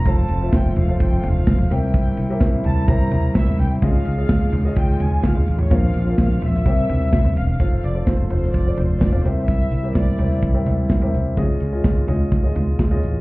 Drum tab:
RD |x-x-x-x-x-x-x-x-|x-x-x-x-x-x-x-x-|x-x-x-x-x-x-x-x-|x-x-x-x-x-x-x-x-|
HH |----------------|----------------|----------------|----------------|
SD |----o-------o---|----o-------o---|----o-------o---|----o--o----o---|
FT |------o---o--o--|------o---o--o--|------o---o--o-o|------o---o--o--|
BD |o---o---o---o---|o---o---o---o---|o---o---o---o---|o---o---o---o---|

RD |----------------|----------------|----------------|
HH |x-x-x-x-x-x-x-x-|x-x-x-x-x-x-x-x-|x-x-x-x-x-x-x-x-|
SD |----o--o----o---|----o--o----o---|----o-------o---|
FT |------o---o--o--|------o---o--o--|------o---o--o--|
BD |o---o---o---o---|o---o---o---o---|o---o---o---o---|